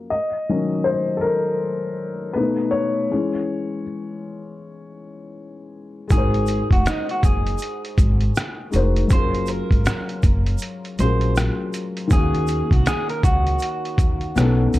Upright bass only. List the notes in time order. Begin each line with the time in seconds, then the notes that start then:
6.11 G#1
6.72 F1
7.24 F#1
7.98 G#1
8.74 F1
9.11 F#1
9.71 G#1
10.24 F#1
10.99 A#1
12.11 D#2
12.72 C2
13.24 C#2
13.99 D#2
14.36 B1
14.74 C#2